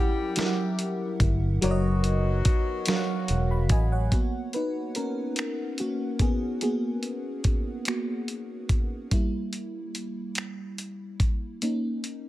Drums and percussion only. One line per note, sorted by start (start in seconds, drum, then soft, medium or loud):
0.36 snare loud
0.36 closed hi-hat medium
0.79 closed hi-hat medium
1.20 kick medium
1.20 closed hi-hat soft
1.62 closed hi-hat medium
2.04 closed hi-hat soft
2.45 kick medium
2.45 closed hi-hat medium
2.86 snare loud
2.86 closed hi-hat medium
3.28 closed hi-hat soft
3.69 kick medium
3.69 closed hi-hat medium
4.12 kick medium
4.12 closed hi-hat soft
4.53 closed hi-hat soft
4.95 closed hi-hat soft
5.36 finger snap medium
5.36 closed hi-hat medium
5.78 closed hi-hat soft
6.19 kick medium
6.19 closed hi-hat soft
6.61 closed hi-hat soft
7.03 closed hi-hat soft
7.44 kick medium
7.44 closed hi-hat soft
7.85 finger snap medium
7.85 closed hi-hat medium
8.28 closed hi-hat soft
8.69 kick medium
8.69 closed hi-hat soft
9.11 kick medium
9.11 closed hi-hat medium
9.53 closed hi-hat soft
9.95 closed hi-hat soft
10.35 finger snap medium
10.35 closed hi-hat medium
10.78 closed hi-hat soft
11.20 kick medium
11.20 closed hi-hat soft
11.62 closed hi-hat medium
12.04 closed hi-hat soft